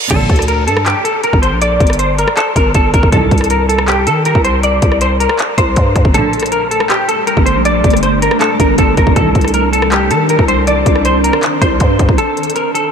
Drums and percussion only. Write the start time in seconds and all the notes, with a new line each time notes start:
0.11 kick, closed hi-hat, crash
0.29 kick, closed hi-hat
0.36 cross-stick, closed hi-hat
0.42 closed hi-hat
0.48 closed hi-hat
0.68 closed hi-hat
0.77 cross-stick
0.86 clap, closed hi-hat
1.05 closed hi-hat
1.24 closed hi-hat
1.33 kick
1.43 closed hi-hat
1.62 closed hi-hat
1.80 kick, closed hi-hat
1.87 cross-stick, closed hi-hat
1.93 closed hi-hat
1.99 closed hi-hat
2.19 closed hi-hat
2.28 cross-stick
2.37 clap, closed hi-hat
2.56 kick, closed hi-hat
2.74 kick, closed hi-hat
2.94 kick, closed hi-hat
3.03 kick
3.12 kick, closed hi-hat
3.31 kick, closed hi-hat
3.38 cross-stick, closed hi-hat
3.44 closed hi-hat
3.50 closed hi-hat
3.69 closed hi-hat
3.79 cross-stick
3.88 clap, closed hi-hat
4.07 closed hi-hat
4.25 closed hi-hat
4.35 kick
4.45 closed hi-hat
4.63 closed hi-hat
4.82 kick, closed hi-hat
4.92 cross-stick
5.01 closed hi-hat
5.20 closed hi-hat
5.29 cross-stick
5.39 clap, closed hi-hat
5.58 kick, closed hi-hat
5.76 kick, closed hi-hat
5.96 kick, closed hi-hat
6.05 kick
6.14 closed hi-hat
6.33 closed hi-hat
6.40 cross-stick, closed hi-hat
6.46 closed hi-hat
6.52 closed hi-hat
6.71 closed hi-hat
6.80 cross-stick
6.90 clap, closed hi-hat
7.09 closed hi-hat
7.27 closed hi-hat
7.37 kick
7.46 closed hi-hat
7.65 closed hi-hat
7.84 kick, closed hi-hat
7.90 cross-stick, closed hi-hat
7.97 closed hi-hat
8.03 closed hi-hat
8.22 closed hi-hat
8.31 cross-stick
8.41 clap, closed hi-hat
8.60 kick, closed hi-hat
8.78 kick, closed hi-hat
8.97 kick, closed hi-hat
9.07 kick
9.16 kick, closed hi-hat
9.35 kick, closed hi-hat
9.41 cross-stick, closed hi-hat
9.48 closed hi-hat
9.54 closed hi-hat
9.73 closed hi-hat
9.82 cross-stick
9.92 clap, closed hi-hat
10.11 closed hi-hat
10.29 closed hi-hat
10.39 kick
10.48 closed hi-hat
10.67 closed hi-hat
10.86 kick, closed hi-hat
10.96 cross-stick
11.05 closed hi-hat
11.24 closed hi-hat
11.33 cross-stick
11.43 clap, closed hi-hat
11.62 kick, closed hi-hat
11.80 kick, closed hi-hat
11.99 kick, closed hi-hat
12.09 kick
12.18 closed hi-hat
12.37 closed hi-hat
12.43 closed hi-hat
12.50 closed hi-hat
12.56 closed hi-hat
12.75 closed hi-hat